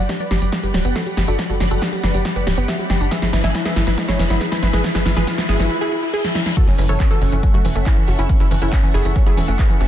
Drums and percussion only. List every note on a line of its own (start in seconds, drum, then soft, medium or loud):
0.09 kick loud
0.09 snare medium
0.09 closed hi-hat medium
0.09 tambourine medium
0.20 closed hi-hat medium
0.20 tambourine soft
0.31 snare medium
0.31 open hi-hat medium
0.42 closed hi-hat soft
0.42 tambourine medium
0.52 kick loud
0.52 snare medium
0.52 closed hi-hat medium
0.52 tambourine medium
0.63 closed hi-hat soft
0.63 tambourine soft
0.74 snare medium
0.74 open hi-hat loud
0.85 closed hi-hat soft
0.85 tambourine medium
0.96 kick loud
0.96 snare medium
0.96 closed hi-hat medium
0.96 tambourine medium
1.06 closed hi-hat soft
1.06 tambourine soft
1.17 snare medium
1.17 open hi-hat loud
1.28 closed hi-hat medium
1.28 tambourine medium
1.39 kick loud
1.39 snare medium
1.39 closed hi-hat medium
1.39 tambourine medium
1.50 closed hi-hat medium
1.50 tambourine soft
1.60 snare medium
1.60 open hi-hat loud
1.71 closed hi-hat medium
1.71 tambourine medium
1.82 kick loud
1.82 snare medium
1.82 closed hi-hat medium
1.82 tambourine medium
1.93 closed hi-hat medium
1.93 tambourine soft
2.04 snare medium
2.04 open hi-hat medium
2.14 closed hi-hat medium
2.14 tambourine medium
2.25 kick loud
2.25 snare medium
2.25 closed hi-hat medium
2.25 tambourine medium
2.36 closed hi-hat soft
2.36 tambourine soft
2.47 snare medium
2.47 open hi-hat loud
2.58 closed hi-hat medium
2.58 tambourine medium
2.68 kick loud
2.68 snare medium
2.68 closed hi-hat medium
2.68 tambourine medium
2.79 closed hi-hat medium
2.79 tambourine soft
2.90 snare medium
2.90 open hi-hat medium
3.01 closed hi-hat soft
3.01 tambourine medium
3.11 kick loud
3.11 snare loud
3.11 closed hi-hat loud
3.11 tambourine medium
3.22 snare medium
3.22 closed hi-hat medium
3.22 tambourine soft
3.33 snare loud
3.33 open hi-hat loud
3.44 snare medium
3.44 tambourine medium
3.55 kick loud
3.55 snare medium
3.55 closed hi-hat loud
3.55 tambourine medium
3.66 snare medium
3.66 closed hi-hat medium
3.66 tambourine soft
3.76 snare medium
3.76 open hi-hat medium
3.87 snare medium
3.87 closed hi-hat medium
3.87 tambourine medium
3.98 kick loud
3.98 snare loud
3.98 closed hi-hat loud
3.98 tambourine medium
4.09 snare medium
4.09 closed hi-hat medium
4.09 tambourine soft
4.19 snare loud
4.19 open hi-hat loud
4.30 snare medium
4.30 tambourine medium
4.41 kick loud
4.41 snare loud
4.41 closed hi-hat loud
4.41 tambourine medium
4.52 snare medium
4.52 closed hi-hat soft
4.52 tambourine soft
4.63 snare loud
4.63 open hi-hat medium
4.74 snare medium
4.74 closed hi-hat medium
4.74 tambourine medium
4.84 kick loud
4.84 snare loud
4.84 closed hi-hat loud
4.84 tambourine medium
4.95 snare medium
4.95 closed hi-hat medium
4.95 tambourine soft
5.06 snare loud
5.06 open hi-hat loud
5.17 snare medium
5.17 closed hi-hat medium
5.17 tambourine medium
5.27 kick loud
5.27 snare loud
5.27 closed hi-hat loud
5.27 tambourine medium
5.38 snare loud
5.38 closed hi-hat medium
5.38 tambourine soft
5.49 snare loud
5.49 open hi-hat medium
5.60 snare medium
5.60 closed hi-hat medium
5.60 tambourine medium
6.24 snare soft
6.35 snare medium
6.46 snare medium
6.57 kick loud
6.57 closed hi-hat loud
6.57 crash loud
6.57 tambourine medium
6.68 clap soft
6.68 closed hi-hat medium
6.68 tambourine soft
6.78 open hi-hat loud
6.89 cross-stick medium
6.89 closed hi-hat medium
6.89 tambourine medium
7.00 kick loud
7.00 clap loud
7.00 closed hi-hat loud
7.00 tambourine medium
7.11 cross-stick medium
7.11 closed hi-hat medium
7.11 tambourine soft
7.22 open hi-hat medium
7.32 closed hi-hat medium
7.32 tambourine medium
7.43 kick loud
7.43 closed hi-hat loud
7.43 tambourine medium
7.54 closed hi-hat medium
7.54 tambourine soft
7.65 open hi-hat loud
7.76 closed hi-hat medium
7.76 tambourine medium
7.86 kick loud
7.86 clap loud
7.86 closed hi-hat loud
7.86 tambourine medium
7.97 closed hi-hat medium
7.97 tambourine soft
8.08 open hi-hat medium
8.19 closed hi-hat medium
8.19 tambourine medium
8.29 kick loud
8.29 closed hi-hat loud
8.29 tambourine medium
8.40 cross-stick medium
8.40 closed hi-hat medium
8.40 tambourine soft
8.51 open hi-hat loud
8.62 cross-stick medium
8.62 tambourine medium
8.73 kick loud
8.73 clap loud
8.73 closed hi-hat medium
8.73 tambourine medium
8.83 closed hi-hat medium
8.83 tambourine soft
8.94 open hi-hat loud
9.05 closed hi-hat medium
9.05 tambourine medium
9.16 kick loud
9.16 closed hi-hat medium
9.16 tambourine medium
9.27 closed hi-hat medium
9.27 tambourine soft
9.37 open hi-hat loud
9.48 closed hi-hat medium
9.48 tambourine medium
9.59 kick loud
9.59 clap loud
9.59 closed hi-hat loud
9.59 tambourine medium
9.70 closed hi-hat medium
9.70 tambourine soft
9.81 open hi-hat medium